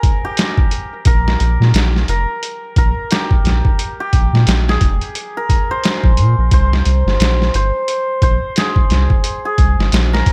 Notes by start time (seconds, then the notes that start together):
Already playing: G#4 A#4
0.03 kick, closed hi-hat
0.25 G4
0.37 snare, closed hi-hat
0.57 kick
0.71 closed hi-hat
1.05 A#1 A#4, kick, closed hi-hat
1.28 snare
1.40 A#1, closed hi-hat
1.60 A#2, snare
1.74 A#1, snare, closed hi-hat
1.96 snare
2.08 F1 A#4, closed hi-hat
2.43 closed hi-hat
2.76 A#1 A#4, kick, closed hi-hat
3.11 G4, snare, closed hi-hat
3.31 kick
3.45 A#1, snare, closed hi-hat
3.65 kick
3.79 closed hi-hat
4.00 G4
4.13 A#1, kick, closed hi-hat
4.33 A#2, snare
4.47 A#1, snare, closed hi-hat
4.69 G#4, snare
4.81 F1, kick, closed hi-hat
5.01 closed hi-hat
5.15 closed hi-hat
5.37 A#4
5.49 kick, closed hi-hat
5.71 C5
5.84 snare, closed hi-hat
6.03 A#1, kick
6.17 A#2, closed hi-hat
6.38 A#1
6.51 C2 C5, kick, closed hi-hat
6.73 snare
6.85 C2, closed hi-hat
7.06 G1, snare
7.20 A#1, snare, closed hi-hat
7.42 snare
7.54 G1 C5, closed hi-hat
7.88 closed hi-hat
8.22 A#1 C5, kick, closed hi-hat
8.56 G#4, snare, closed hi-hat
8.76 kick
8.90 C2, snare, closed hi-hat
9.10 kick
9.24 closed hi-hat
9.45 G#4
9.58 C2, kick, closed hi-hat
9.78 G1, snare
9.92 A#1, snare, closed hi-hat
10.13 A#4, snare
10.26 G1, kick, closed hi-hat